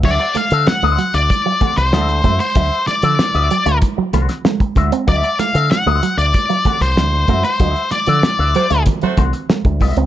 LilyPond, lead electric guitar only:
\new Staff \with { instrumentName = "Lead electric guitar" } { \time 4/4 \key d \mixolydian \tempo 4 = 95 d''8 f''8 fis''8. d''4 c''4 c''16~ | c''8 d''4. r2 | d''8 f''8 fis''8. d''4 c''4 c''16~ | c''8 d''4. r2 | }